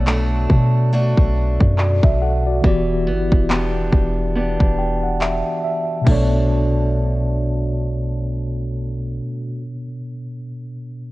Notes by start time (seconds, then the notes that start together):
Already playing: B1 B2 F#3 B3 A4 C#5 D5
0.07 A3 D4 F#4, clap
0.50 B2, kick
0.93 A3 D4 F#4
1.17 B1, kick
1.61 F#2, kick
1.78 F#4 D5, clap
2.03 B1 E5, kick
2.22 A4 F#5
2.47 F#4 D5
2.62 E1 E3 B3 F#4, kick
2.66 G4 D5
3.07 G1 B3
3.32 E1, kick
3.50 B3 D4 G4, clap
3.93 E1, kick
4.35 B3 D4 G4
4.60 E1, kick
4.79 G5
5.03 F#5
5.21 E5, clap
5.64 E5
6.01 B2 B3
6.07 B1 A3 D4 A4, kick, crash
6.12 F#4 C#5